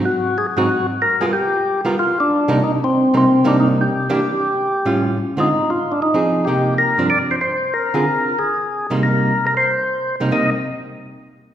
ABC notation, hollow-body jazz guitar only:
X:1
M:4/4
L:1/8
Q:"Swing" 1/4=187
K:Cm
V:1 name="Hollow-body jazz guitar"
z3 [A,,_G,CE] z3 [=G,=B,F_B] | z3 [G,=B,F^A] z3 [C,G,^A,E] | z3 [C,G,B,E] z [C,G,B,E]3 | z [=E,B,DG] z4 [=A,,G,^C^E]2 |
z [D,A,CF] z4 [F,CEA]2 | [C,B,EG]3 [G,,F,CD] z4 | z [D,CFA] z4 z [C,G,B,E]- | [C,G,B,E]2 z4 z [C,G,B,E] |
[C,G,B,E] z6 z |]